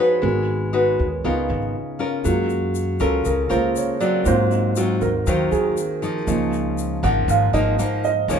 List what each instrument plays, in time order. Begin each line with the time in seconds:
Already playing: nylon-string guitar F3 D#4, grand piano G#3 C#4 F4 G#4 C5 C#5
0.00 nylon-string guitar F#4 B4
0.22 upright bass G#1, nylon-string guitar G#3, grand piano B3 F#4 A#4
0.73 nylon-string guitar D#4 F#4 B4
0.99 upright bass D#2
1.24 upright bass C#2, nylon-string guitar C#3 B3 F4 A#4, grand piano B3 D#4 F4
1.50 upright bass G#1
1.99 nylon-string guitar C#4 F4 A#4
2.24 upright bass F#2, nylon-string guitar F#3, grand piano G#3 A#3 F4, shaker
2.49 shaker
2.75 shaker
3.00 upright bass C#2, nylon-string guitar C#4 F4 A#4, grand piano A4, shaker
3.25 upright bass C#2, nylon-string guitar C#3, grand piano A#4, shaker
3.49 upright bass C#2, grand piano G#3 A#3 F4 C5, nylon-string guitar C#4 F4 A#4, shaker
3.76 grand piano C#5, shaker
4.00 nylon-string guitar F#3 C4 F4, grand piano D5, shaker
4.25 nylon-string guitar G#2, upright bass G#2, grand piano F#3 A#3 C4 F4 C5, shaker
4.51 grand piano D#4, shaker
4.76 nylon-string guitar F#3 C4 F4, grand piano F#4, shaker
5.01 upright bass D#2, grand piano A#4, shaker
5.27 upright bass D#2, nylon-string guitar D#3 F#3 C4 F4, grand piano C5, shaker
5.52 upright bass D#2, grand piano G#4, shaker
5.77 shaker
6.02 nylon-string guitar F3 A#3 D#4, shaker
6.27 upright bass C#2, nylon-string guitar C#3, grand piano F3 A#3 D#4, shaker
6.53 shaker
6.78 shaker
7.03 upright bass G#1, nylon-string guitar F3 A#3 D#4, grand piano F#5, shaker
7.28 upright bass G#1, nylon-string guitar G#2, grand piano F5, shaker
7.53 upright bass G#1, nylon-string guitar F3 A#3 D#4, grand piano D#5, shaker
7.79 nylon-string guitar F3 A#3 D#4, grand piano C5, shaker
8.04 grand piano D#5, shaker
8.28 upright bass C#2, nylon-string guitar C#3 F3 A#3 D#4, grand piano C#5, shaker